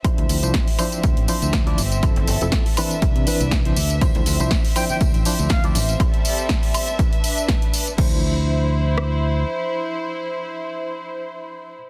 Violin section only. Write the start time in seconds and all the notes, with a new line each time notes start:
0.05 C4 E5
2.03 A4
3.02 D4 B4
4.02 C4
6.01 G3 A4 E5
7.00 D4 B4
7.98 E4 C5